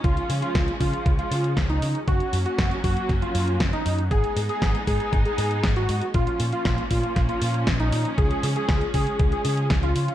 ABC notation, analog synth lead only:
X:1
M:4/4
L:1/16
Q:1/4=118
K:C#mix
V:1 name="Analog synth lead"
E2 z E2 z E2 z E3 z D2 z | F2 z F2 z F2 z E3 z D2 z | G2 z G2 z G2 z G3 z F2 z | E2 z E2 z E2 z E3 z D2 z |
G2 z G2 z G2 z G3 z E2 z |]